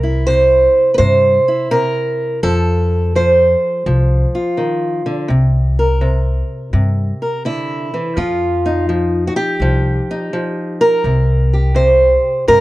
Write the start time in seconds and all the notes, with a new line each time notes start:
Already playing: C2 C3 A#4
0.03 E4
0.27 C3 C5
0.94 B4 C5
0.99 G2 C3
1.48 E4
1.71 C3 A#4
2.43 F2 F3 A4
3.15 F3 C5
3.86 C2 F3
4.35 F4
4.57 D#3
5.06 D3
5.28 C2 C3
5.79 A#4
6.01 C3
6.73 G2 C3
7.22 A#4
7.45 D3 E4
7.94 E3
8.16 F2 F3 F4
8.66 D#4
8.89 F3
9.27 F#4
9.36 G4
9.60 C2 F3
10.11 D#4
10.33 F3
10.81 A#4
11.04 C2 C3
11.53 G4
11.75 C3 C5
12.48 G2 C3 A#4